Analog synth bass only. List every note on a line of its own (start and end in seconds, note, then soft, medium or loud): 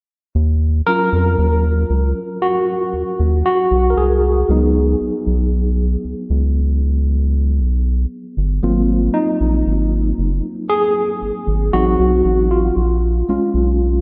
0.35 0.82 D#2 loud
1.13 1.36 F2 medium
1.39 1.85 D#2 loud
1.90 2.13 C#2 medium
2.93 3.04 D#2 soft
3.20 3.43 D#2 medium
3.71 3.95 B1 medium
3.97 4.44 C2 medium
4.49 4.95 C#2 loud
5.00 5.11 B1 soft
5.27 5.96 B1 medium
6.04 6.15 C#2 soft
6.30 7.61 C#2 loud
7.60 8.06 B1 medium
8.37 8.60 G1 loud
8.63 9.09 G#1 loud
9.41 9.64 A#1 medium
9.66 10.13 G#1 medium
10.18 10.41 F#1 medium
11.22 11.32 G#1 soft
11.47 11.71 G#1 medium
11.73 11.96 A1 medium
11.99 12.22 B1 medium
12.25 12.71 A1 medium
12.76 13.23 A#1 loud
13.28 13.39 B1 soft
13.54 14.01 B1 medium